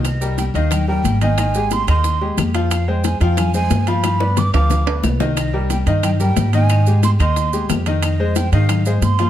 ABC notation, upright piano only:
X:1
M:4/4
L:1/8
Q:1/4=180
K:Cm
V:1 name="Upright piano"
z [G,GB]2 [E,Ee]2 [G,GB]2 [E,Ee] | [E,Ee] [A,GA]2 [E,Ee]2 [A,GA]2 [F,Ff]- | [F,Ff] [A,Ac]2 [F,Ff]2 [A,Ac]2 [F,Ff] | [F,Ff] [=B,=Bd]2 [F,Ff]2 [B,Bd]2 [E,Ee]- |
[E,Ee] [G,GB]2 [E,Ee]2 [G,GB]2 [E,Ee] | [E,Ee] [A,GA]2 [E,Ee]2 [A,GA]2 [E,Ee]- | [E,Ee] [A,Ac]2 [E,Ee]2 [A,Ac]2 [F,Ff] |]